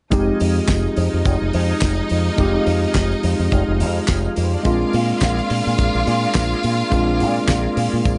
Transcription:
0.11 fingered electric bass F1, tonewheel organ F3 G#3 D#4, tine electric piano G#3 C4 D#4 G4, string section D#4 D#5, kick, closed hi-hat, tambourine
0.40 fingered electric bass F2, open hi-hat, tambourine
0.56 tambourine
0.67 fingered electric bass F1, kick, snare, clap, closed hi-hat, tambourine
0.96 fingered electric bass F2, open hi-hat, tambourine
1.14 fingered electric bass F2
1.25 fingered electric bass F1, kick, closed hi-hat, tambourine
1.42 fingered electric bass F1
1.53 fingered electric bass F2, open hi-hat, tambourine
1.81 fingered electric bass F1, kick, snare, clap, tambourine
2.09 fingered electric bass F2, open hi-hat, tambourine
2.37 fingered electric bass F1, tine electric piano G#3 C4 D#4 G4, tonewheel organ F4, kick, closed hi-hat, tambourine
2.66 fingered electric bass F2, open hi-hat, tambourine
2.94 fingered electric bass F1, kick, snare, clap, closed hi-hat, tambourine
3.12 tambourine
3.23 fingered electric bass F2, open hi-hat, tambourine
3.39 fingered electric bass F2, tambourine
3.52 fingered electric bass F1, kick, closed hi-hat, tambourine
3.68 fingered electric bass F1
3.80 fingered electric bass F2, open hi-hat, tambourine
4.07 fingered electric bass F1, kick, snare, clap, closed hi-hat, tambourine
4.36 fingered electric bass F2, string section A#3 A#4, open hi-hat, tambourine
4.44 string section C4 C5
4.53 string section D4 D5
4.59 string section D#4 D#5
4.63 fingered electric bass A#1, tine electric piano G#3 C4 D4 F4, tonewheel organ G#3 A#3 D4, string section F4 F5, kick, closed hi-hat, tambourine
4.93 fingered electric bass A#2, open hi-hat, tambourine
5.20 fingered electric bass A#1, kick, snare, clap, closed hi-hat, tambourine
5.39 tambourine
5.50 fingered electric bass A#2, open hi-hat, tambourine
5.67 fingered electric bass A#2, tambourine
5.78 fingered electric bass A#1, kick, closed hi-hat, tambourine
5.94 fingered electric bass A#1, tambourine
6.07 fingered electric bass A#2, open hi-hat, tambourine
6.34 fingered electric bass A#1, kick, snare, clap, closed hi-hat, tambourine
6.63 fingered electric bass A#2, open hi-hat, tambourine
6.90 fingered electric bass A#1, tine electric piano G#3 C4 D4 F4, kick, closed hi-hat, tambourine
7.20 fingered electric bass A#2, open hi-hat, tambourine
7.36 tambourine
7.48 fingered electric bass A#1, kick, snare, clap, closed hi-hat, tambourine
7.77 fingered electric bass A#2, open hi-hat, tambourine
7.93 fingered electric bass A#2
8.05 fingered electric bass A#1, kick, closed hi-hat, tambourine

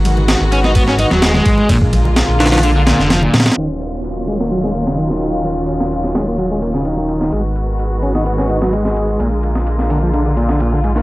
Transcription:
Already playing: detuned saw bass G#1, string section D#3 G#3 B3 F#4
0.05 ride, high conga
0.17 muted conga, low conga
0.28 snare, ride
0.41 detuned saw bass G#1
0.52 overdriven electric guitar C#4, ride
0.64 overdriven electric guitar D#4, snare, high conga
0.75 overdriven electric guitar B3, kick, ride
0.88 overdriven electric guitar C#4, snare
0.99 overdriven electric guitar D#4, ride, muted conga
1.11 detuned saw bass D#1, overdriven electric guitar F#3, snare, muted conga
1.22 overdriven electric guitar G#3, snare, ride
1.34 overdriven electric guitar G#3, snare, high conga, low conga
1.46 detuned saw bass G#2, kick, ride
1.58 muted conga
1.69 detuned saw bass A#1, overdriven electric guitar A#2, string section D3 A#3 F4, kick, ride
1.82 kick
1.93 ride, high conga
2.05 muted conga, low conga
2.16 snare, ride
2.29 detuned saw bass A#1
2.40 overdriven electric guitar D3, snare, ride
2.46 snare, ride
2.52 overdriven electric guitar F3, snare, ride, high conga
2.58 snare, ride
2.63 overdriven electric guitar D3, ride
2.76 overdriven electric guitar D3
2.87 overdriven electric guitar A#2, snare, ride
2.99 detuned saw bass F1, overdriven electric guitar D3, snare
3.10 overdriven electric guitar F3, snare, ride
3.23 overdriven electric guitar A#2, high conga, low conga
3.34 detuned saw bass A#2, snare, ride
3.40 snare, ride
3.46 snare, ride, muted conga
3.52 snare, ride
3.57 detuned saw bass D#1, string section D#3 F#3 C#4 F4, overdriven electric guitar D#3, ride, downlifter
3.81 ride
4.04 ride
4.28 overdriven electric guitar G#3, ride
4.40 overdriven electric guitar A#3, snare
4.51 overdriven electric guitar F#3, ride
4.64 overdriven electric guitar G#3, snare
4.75 overdriven electric guitar A#3, ride
4.87 overdriven electric guitar C#3, snare
4.98 overdriven electric guitar D#3, ride
5.10 overdriven electric guitar D#3, snare
5.21 ride
5.45 overdriven electric guitar D#3, ride
5.68 ride
5.80 snare
5.91 ride
6.04 snare
6.15 overdriven electric guitar G#3, snare, ride
6.28 overdriven electric guitar A#3
6.38 overdriven electric guitar F#3, ride
6.51 overdriven electric guitar G#3
6.62 overdriven electric guitar A#3, ride
6.74 overdriven electric guitar C#3, snare
6.85 overdriven electric guitar D#3, ride
6.98 overdriven electric guitar D#3
7.09 ride
7.21 snare
7.32 detuned saw bass G#1, string section D#3 G#3 B3 F#4, overdriven electric guitar G#3, ride
7.56 ride
7.79 ride
8.03 overdriven electric guitar C#4, ride
8.15 overdriven electric guitar D#4, snare
8.26 overdriven electric guitar B3, ride
8.38 overdriven electric guitar C#4, snare
8.49 overdriven electric guitar D#4, ride
8.62 overdriven electric guitar F#3, snare
8.73 overdriven electric guitar G#3, ride
8.85 overdriven electric guitar G#3, snare
8.96 ride
9.19 detuned saw bass A#1, overdriven electric guitar A#2, string section D3 A#3 F4, ride
9.43 ride
9.55 snare
9.67 ride
9.79 snare
9.90 overdriven electric guitar D3, open hi-hat
10.03 overdriven electric guitar F3
10.13 overdriven electric guitar D3, ride
10.26 overdriven electric guitar D3
10.37 overdriven electric guitar A#2, ride
10.49 overdriven electric guitar D3, snare
10.60 overdriven electric guitar A#2, ride
10.73 overdriven electric guitar D3
10.84 overdriven electric guitar G#2, ride
10.96 overdriven electric guitar A#3, snare

